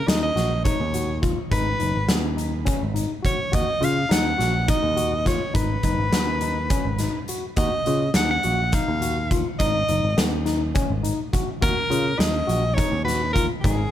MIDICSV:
0, 0, Header, 1, 5, 480
1, 0, Start_track
1, 0, Tempo, 576923
1, 1260, Time_signature, 7, 3, 24, 8
1, 11573, End_track
2, 0, Start_track
2, 0, Title_t, "Soprano saxophone"
2, 0, Program_c, 0, 64
2, 66, Note_on_c, 0, 75, 79
2, 184, Note_off_c, 0, 75, 0
2, 188, Note_on_c, 0, 75, 85
2, 519, Note_off_c, 0, 75, 0
2, 535, Note_on_c, 0, 73, 76
2, 984, Note_off_c, 0, 73, 0
2, 1262, Note_on_c, 0, 71, 101
2, 1767, Note_off_c, 0, 71, 0
2, 2706, Note_on_c, 0, 73, 83
2, 2945, Note_on_c, 0, 75, 101
2, 2957, Note_off_c, 0, 73, 0
2, 3195, Note_on_c, 0, 77, 89
2, 3207, Note_off_c, 0, 75, 0
2, 3425, Note_on_c, 0, 78, 89
2, 3438, Note_off_c, 0, 77, 0
2, 3903, Note_off_c, 0, 78, 0
2, 3908, Note_on_c, 0, 75, 85
2, 4351, Note_off_c, 0, 75, 0
2, 4387, Note_on_c, 0, 73, 69
2, 4607, Note_off_c, 0, 73, 0
2, 4617, Note_on_c, 0, 71, 83
2, 6026, Note_off_c, 0, 71, 0
2, 6296, Note_on_c, 0, 75, 88
2, 6745, Note_off_c, 0, 75, 0
2, 6788, Note_on_c, 0, 78, 87
2, 6897, Note_off_c, 0, 78, 0
2, 6911, Note_on_c, 0, 78, 93
2, 7272, Note_on_c, 0, 77, 79
2, 7284, Note_off_c, 0, 78, 0
2, 7747, Note_off_c, 0, 77, 0
2, 7977, Note_on_c, 0, 75, 102
2, 8486, Note_off_c, 0, 75, 0
2, 9671, Note_on_c, 0, 70, 94
2, 10137, Note_on_c, 0, 75, 89
2, 10149, Note_off_c, 0, 70, 0
2, 10598, Note_on_c, 0, 73, 94
2, 10611, Note_off_c, 0, 75, 0
2, 10849, Note_off_c, 0, 73, 0
2, 10853, Note_on_c, 0, 71, 82
2, 11078, Note_off_c, 0, 71, 0
2, 11090, Note_on_c, 0, 70, 74
2, 11200, Note_off_c, 0, 70, 0
2, 11324, Note_on_c, 0, 68, 80
2, 11573, Note_off_c, 0, 68, 0
2, 11573, End_track
3, 0, Start_track
3, 0, Title_t, "Tine electric piano"
3, 0, Program_c, 1, 4
3, 62, Note_on_c, 1, 63, 71
3, 191, Note_off_c, 1, 63, 0
3, 300, Note_on_c, 1, 66, 67
3, 429, Note_off_c, 1, 66, 0
3, 544, Note_on_c, 1, 63, 71
3, 672, Note_off_c, 1, 63, 0
3, 784, Note_on_c, 1, 66, 66
3, 912, Note_off_c, 1, 66, 0
3, 1017, Note_on_c, 1, 65, 62
3, 1147, Note_off_c, 1, 65, 0
3, 1258, Note_on_c, 1, 63, 78
3, 1387, Note_off_c, 1, 63, 0
3, 1495, Note_on_c, 1, 63, 63
3, 1625, Note_off_c, 1, 63, 0
3, 1731, Note_on_c, 1, 59, 76
3, 1863, Note_off_c, 1, 59, 0
3, 1971, Note_on_c, 1, 63, 67
3, 2103, Note_off_c, 1, 63, 0
3, 2207, Note_on_c, 1, 61, 80
3, 2340, Note_off_c, 1, 61, 0
3, 2450, Note_on_c, 1, 63, 68
3, 2582, Note_off_c, 1, 63, 0
3, 2682, Note_on_c, 1, 66, 63
3, 2816, Note_off_c, 1, 66, 0
3, 2928, Note_on_c, 1, 66, 77
3, 3060, Note_off_c, 1, 66, 0
3, 3168, Note_on_c, 1, 65, 69
3, 3300, Note_off_c, 1, 65, 0
3, 3403, Note_on_c, 1, 63, 76
3, 3537, Note_off_c, 1, 63, 0
3, 3646, Note_on_c, 1, 66, 70
3, 3779, Note_off_c, 1, 66, 0
3, 3895, Note_on_c, 1, 63, 77
3, 4025, Note_off_c, 1, 63, 0
3, 4131, Note_on_c, 1, 66, 70
3, 4262, Note_off_c, 1, 66, 0
3, 4372, Note_on_c, 1, 65, 64
3, 4503, Note_off_c, 1, 65, 0
3, 4608, Note_on_c, 1, 63, 79
3, 4740, Note_off_c, 1, 63, 0
3, 4863, Note_on_c, 1, 63, 69
3, 4991, Note_off_c, 1, 63, 0
3, 5096, Note_on_c, 1, 59, 70
3, 5226, Note_off_c, 1, 59, 0
3, 5342, Note_on_c, 1, 63, 73
3, 5470, Note_off_c, 1, 63, 0
3, 5575, Note_on_c, 1, 61, 77
3, 5705, Note_off_c, 1, 61, 0
3, 5823, Note_on_c, 1, 63, 63
3, 5951, Note_off_c, 1, 63, 0
3, 6064, Note_on_c, 1, 66, 59
3, 6192, Note_off_c, 1, 66, 0
3, 6299, Note_on_c, 1, 66, 75
3, 6428, Note_off_c, 1, 66, 0
3, 6543, Note_on_c, 1, 65, 62
3, 6672, Note_off_c, 1, 65, 0
3, 6781, Note_on_c, 1, 63, 73
3, 6910, Note_off_c, 1, 63, 0
3, 7022, Note_on_c, 1, 66, 66
3, 7151, Note_off_c, 1, 66, 0
3, 7264, Note_on_c, 1, 63, 77
3, 7392, Note_off_c, 1, 63, 0
3, 7502, Note_on_c, 1, 66, 66
3, 7631, Note_off_c, 1, 66, 0
3, 7745, Note_on_c, 1, 65, 69
3, 7873, Note_off_c, 1, 65, 0
3, 7991, Note_on_c, 1, 63, 77
3, 8117, Note_off_c, 1, 63, 0
3, 8230, Note_on_c, 1, 63, 63
3, 8357, Note_off_c, 1, 63, 0
3, 8463, Note_on_c, 1, 59, 75
3, 8591, Note_off_c, 1, 59, 0
3, 8700, Note_on_c, 1, 63, 69
3, 8830, Note_off_c, 1, 63, 0
3, 8940, Note_on_c, 1, 61, 80
3, 9069, Note_off_c, 1, 61, 0
3, 9179, Note_on_c, 1, 63, 69
3, 9308, Note_off_c, 1, 63, 0
3, 9427, Note_on_c, 1, 66, 66
3, 9554, Note_off_c, 1, 66, 0
3, 9662, Note_on_c, 1, 66, 73
3, 9791, Note_off_c, 1, 66, 0
3, 9901, Note_on_c, 1, 65, 65
3, 10029, Note_off_c, 1, 65, 0
3, 10138, Note_on_c, 1, 63, 74
3, 10267, Note_off_c, 1, 63, 0
3, 10376, Note_on_c, 1, 66, 75
3, 10506, Note_off_c, 1, 66, 0
3, 10621, Note_on_c, 1, 63, 82
3, 10749, Note_off_c, 1, 63, 0
3, 10858, Note_on_c, 1, 66, 68
3, 10987, Note_off_c, 1, 66, 0
3, 11102, Note_on_c, 1, 65, 65
3, 11230, Note_off_c, 1, 65, 0
3, 11350, Note_on_c, 1, 63, 71
3, 11475, Note_off_c, 1, 63, 0
3, 11573, End_track
4, 0, Start_track
4, 0, Title_t, "Picked electric bass"
4, 0, Program_c, 2, 34
4, 64, Note_on_c, 2, 39, 76
4, 244, Note_off_c, 2, 39, 0
4, 297, Note_on_c, 2, 34, 77
4, 571, Note_off_c, 2, 34, 0
4, 668, Note_on_c, 2, 39, 67
4, 1119, Note_off_c, 2, 39, 0
4, 1260, Note_on_c, 2, 32, 94
4, 1442, Note_off_c, 2, 32, 0
4, 1505, Note_on_c, 2, 30, 78
4, 1594, Note_off_c, 2, 30, 0
4, 1626, Note_on_c, 2, 32, 83
4, 1714, Note_off_c, 2, 32, 0
4, 1751, Note_on_c, 2, 39, 82
4, 2201, Note_off_c, 2, 39, 0
4, 2352, Note_on_c, 2, 32, 74
4, 2529, Note_off_c, 2, 32, 0
4, 2943, Note_on_c, 2, 39, 86
4, 3033, Note_off_c, 2, 39, 0
4, 3174, Note_on_c, 2, 49, 73
4, 3358, Note_off_c, 2, 49, 0
4, 3420, Note_on_c, 2, 39, 78
4, 3601, Note_off_c, 2, 39, 0
4, 3656, Note_on_c, 2, 34, 86
4, 3930, Note_off_c, 2, 34, 0
4, 4015, Note_on_c, 2, 39, 69
4, 4472, Note_off_c, 2, 39, 0
4, 4616, Note_on_c, 2, 32, 93
4, 4799, Note_off_c, 2, 32, 0
4, 4859, Note_on_c, 2, 30, 75
4, 4951, Note_off_c, 2, 30, 0
4, 4977, Note_on_c, 2, 32, 86
4, 5069, Note_off_c, 2, 32, 0
4, 5100, Note_on_c, 2, 39, 85
4, 5555, Note_off_c, 2, 39, 0
4, 5700, Note_on_c, 2, 32, 71
4, 5882, Note_off_c, 2, 32, 0
4, 6301, Note_on_c, 2, 39, 85
4, 6392, Note_off_c, 2, 39, 0
4, 6549, Note_on_c, 2, 49, 75
4, 6728, Note_off_c, 2, 49, 0
4, 6787, Note_on_c, 2, 39, 77
4, 6967, Note_off_c, 2, 39, 0
4, 7033, Note_on_c, 2, 34, 77
4, 7302, Note_off_c, 2, 34, 0
4, 7391, Note_on_c, 2, 39, 70
4, 7842, Note_off_c, 2, 39, 0
4, 7990, Note_on_c, 2, 32, 89
4, 8168, Note_off_c, 2, 32, 0
4, 8230, Note_on_c, 2, 30, 74
4, 8318, Note_off_c, 2, 30, 0
4, 8346, Note_on_c, 2, 32, 85
4, 8435, Note_off_c, 2, 32, 0
4, 8466, Note_on_c, 2, 39, 85
4, 8919, Note_off_c, 2, 39, 0
4, 9071, Note_on_c, 2, 32, 73
4, 9249, Note_off_c, 2, 32, 0
4, 9673, Note_on_c, 2, 39, 83
4, 9759, Note_off_c, 2, 39, 0
4, 9907, Note_on_c, 2, 49, 74
4, 10086, Note_off_c, 2, 49, 0
4, 10142, Note_on_c, 2, 39, 81
4, 10323, Note_off_c, 2, 39, 0
4, 10385, Note_on_c, 2, 34, 84
4, 10655, Note_off_c, 2, 34, 0
4, 10748, Note_on_c, 2, 39, 73
4, 11198, Note_off_c, 2, 39, 0
4, 11351, Note_on_c, 2, 32, 96
4, 11528, Note_off_c, 2, 32, 0
4, 11573, End_track
5, 0, Start_track
5, 0, Title_t, "Drums"
5, 70, Note_on_c, 9, 38, 107
5, 70, Note_on_c, 9, 42, 78
5, 153, Note_off_c, 9, 38, 0
5, 153, Note_off_c, 9, 42, 0
5, 309, Note_on_c, 9, 38, 29
5, 309, Note_on_c, 9, 42, 54
5, 392, Note_off_c, 9, 38, 0
5, 392, Note_off_c, 9, 42, 0
5, 542, Note_on_c, 9, 42, 71
5, 544, Note_on_c, 9, 36, 99
5, 626, Note_off_c, 9, 42, 0
5, 628, Note_off_c, 9, 36, 0
5, 781, Note_on_c, 9, 42, 54
5, 864, Note_off_c, 9, 42, 0
5, 1023, Note_on_c, 9, 36, 73
5, 1024, Note_on_c, 9, 42, 53
5, 1106, Note_off_c, 9, 36, 0
5, 1107, Note_off_c, 9, 42, 0
5, 1260, Note_on_c, 9, 42, 66
5, 1261, Note_on_c, 9, 36, 91
5, 1344, Note_off_c, 9, 36, 0
5, 1344, Note_off_c, 9, 42, 0
5, 1496, Note_on_c, 9, 42, 51
5, 1579, Note_off_c, 9, 42, 0
5, 1735, Note_on_c, 9, 38, 107
5, 1735, Note_on_c, 9, 42, 77
5, 1818, Note_off_c, 9, 38, 0
5, 1818, Note_off_c, 9, 42, 0
5, 1981, Note_on_c, 9, 42, 52
5, 2064, Note_off_c, 9, 42, 0
5, 2216, Note_on_c, 9, 42, 73
5, 2220, Note_on_c, 9, 36, 94
5, 2299, Note_off_c, 9, 42, 0
5, 2303, Note_off_c, 9, 36, 0
5, 2461, Note_on_c, 9, 42, 58
5, 2545, Note_off_c, 9, 42, 0
5, 2701, Note_on_c, 9, 36, 70
5, 2705, Note_on_c, 9, 42, 55
5, 2784, Note_off_c, 9, 36, 0
5, 2788, Note_off_c, 9, 42, 0
5, 2938, Note_on_c, 9, 42, 73
5, 2940, Note_on_c, 9, 36, 95
5, 3022, Note_off_c, 9, 42, 0
5, 3023, Note_off_c, 9, 36, 0
5, 3184, Note_on_c, 9, 42, 57
5, 3267, Note_off_c, 9, 42, 0
5, 3422, Note_on_c, 9, 38, 103
5, 3422, Note_on_c, 9, 42, 85
5, 3505, Note_off_c, 9, 38, 0
5, 3505, Note_off_c, 9, 42, 0
5, 3664, Note_on_c, 9, 38, 32
5, 3664, Note_on_c, 9, 42, 58
5, 3747, Note_off_c, 9, 38, 0
5, 3747, Note_off_c, 9, 42, 0
5, 3896, Note_on_c, 9, 42, 76
5, 3898, Note_on_c, 9, 36, 101
5, 3980, Note_off_c, 9, 42, 0
5, 3981, Note_off_c, 9, 36, 0
5, 4138, Note_on_c, 9, 42, 57
5, 4221, Note_off_c, 9, 42, 0
5, 4377, Note_on_c, 9, 36, 69
5, 4378, Note_on_c, 9, 38, 29
5, 4378, Note_on_c, 9, 42, 57
5, 4461, Note_off_c, 9, 36, 0
5, 4461, Note_off_c, 9, 38, 0
5, 4461, Note_off_c, 9, 42, 0
5, 4617, Note_on_c, 9, 36, 99
5, 4618, Note_on_c, 9, 42, 72
5, 4700, Note_off_c, 9, 36, 0
5, 4701, Note_off_c, 9, 42, 0
5, 4852, Note_on_c, 9, 42, 54
5, 4855, Note_on_c, 9, 36, 63
5, 4935, Note_off_c, 9, 42, 0
5, 4938, Note_off_c, 9, 36, 0
5, 5096, Note_on_c, 9, 38, 104
5, 5096, Note_on_c, 9, 42, 81
5, 5180, Note_off_c, 9, 38, 0
5, 5180, Note_off_c, 9, 42, 0
5, 5332, Note_on_c, 9, 42, 53
5, 5415, Note_off_c, 9, 42, 0
5, 5574, Note_on_c, 9, 42, 77
5, 5577, Note_on_c, 9, 36, 104
5, 5658, Note_off_c, 9, 42, 0
5, 5660, Note_off_c, 9, 36, 0
5, 5811, Note_on_c, 9, 38, 30
5, 5811, Note_on_c, 9, 42, 56
5, 5894, Note_off_c, 9, 38, 0
5, 5894, Note_off_c, 9, 42, 0
5, 6056, Note_on_c, 9, 42, 52
5, 6139, Note_off_c, 9, 42, 0
5, 6294, Note_on_c, 9, 42, 71
5, 6298, Note_on_c, 9, 36, 100
5, 6377, Note_off_c, 9, 42, 0
5, 6382, Note_off_c, 9, 36, 0
5, 6539, Note_on_c, 9, 42, 54
5, 6622, Note_off_c, 9, 42, 0
5, 6772, Note_on_c, 9, 38, 103
5, 6772, Note_on_c, 9, 42, 76
5, 6855, Note_off_c, 9, 38, 0
5, 6855, Note_off_c, 9, 42, 0
5, 7016, Note_on_c, 9, 42, 52
5, 7099, Note_off_c, 9, 42, 0
5, 7258, Note_on_c, 9, 38, 32
5, 7258, Note_on_c, 9, 42, 83
5, 7263, Note_on_c, 9, 36, 103
5, 7342, Note_off_c, 9, 38, 0
5, 7342, Note_off_c, 9, 42, 0
5, 7347, Note_off_c, 9, 36, 0
5, 7504, Note_on_c, 9, 42, 64
5, 7587, Note_off_c, 9, 42, 0
5, 7746, Note_on_c, 9, 36, 70
5, 7746, Note_on_c, 9, 42, 56
5, 7829, Note_off_c, 9, 36, 0
5, 7829, Note_off_c, 9, 42, 0
5, 7985, Note_on_c, 9, 42, 74
5, 7987, Note_on_c, 9, 36, 97
5, 8068, Note_off_c, 9, 42, 0
5, 8070, Note_off_c, 9, 36, 0
5, 8224, Note_on_c, 9, 42, 56
5, 8307, Note_off_c, 9, 42, 0
5, 8468, Note_on_c, 9, 38, 109
5, 8468, Note_on_c, 9, 42, 80
5, 8551, Note_off_c, 9, 38, 0
5, 8551, Note_off_c, 9, 42, 0
5, 8704, Note_on_c, 9, 38, 31
5, 8704, Note_on_c, 9, 42, 55
5, 8787, Note_off_c, 9, 38, 0
5, 8787, Note_off_c, 9, 42, 0
5, 8944, Note_on_c, 9, 42, 73
5, 8949, Note_on_c, 9, 36, 94
5, 9027, Note_off_c, 9, 42, 0
5, 9032, Note_off_c, 9, 36, 0
5, 9189, Note_on_c, 9, 42, 59
5, 9273, Note_off_c, 9, 42, 0
5, 9429, Note_on_c, 9, 42, 53
5, 9430, Note_on_c, 9, 36, 65
5, 9512, Note_off_c, 9, 42, 0
5, 9514, Note_off_c, 9, 36, 0
5, 9671, Note_on_c, 9, 36, 100
5, 9671, Note_on_c, 9, 42, 71
5, 9754, Note_off_c, 9, 42, 0
5, 9755, Note_off_c, 9, 36, 0
5, 9914, Note_on_c, 9, 42, 57
5, 9997, Note_off_c, 9, 42, 0
5, 10152, Note_on_c, 9, 38, 112
5, 10152, Note_on_c, 9, 42, 77
5, 10235, Note_off_c, 9, 38, 0
5, 10235, Note_off_c, 9, 42, 0
5, 10393, Note_on_c, 9, 42, 53
5, 10476, Note_off_c, 9, 42, 0
5, 10633, Note_on_c, 9, 36, 99
5, 10636, Note_on_c, 9, 42, 72
5, 10716, Note_off_c, 9, 36, 0
5, 10719, Note_off_c, 9, 42, 0
5, 10884, Note_on_c, 9, 38, 31
5, 10884, Note_on_c, 9, 42, 54
5, 10967, Note_off_c, 9, 38, 0
5, 10967, Note_off_c, 9, 42, 0
5, 11113, Note_on_c, 9, 36, 68
5, 11116, Note_on_c, 9, 42, 54
5, 11196, Note_off_c, 9, 36, 0
5, 11199, Note_off_c, 9, 42, 0
5, 11350, Note_on_c, 9, 36, 90
5, 11356, Note_on_c, 9, 42, 73
5, 11434, Note_off_c, 9, 36, 0
5, 11439, Note_off_c, 9, 42, 0
5, 11573, End_track
0, 0, End_of_file